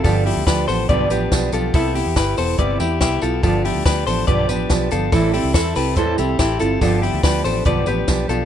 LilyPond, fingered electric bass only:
\new Staff \with { instrumentName = "Fingered electric bass" } { \clef bass \time 4/4 \key g \mixolydian \tempo 4 = 142 g,,8. d,16 d,8 a,,8 b,,8 a,,8 b,,8 b,,8 | c,8. e,16 g,,8 e,,8 g,,8 e,8 c,8 b,,8 | g,,8. d,16 d,8 a,,8 b,,8 a,,8 b,,8 g,,8 | a,,8. c,16 e,8 c,8 e,8 c,8 a,,8 g,,8 |
g,,8. d,16 d,8 a,,8 b,,8 a,,8 b,,8 b,,8 | }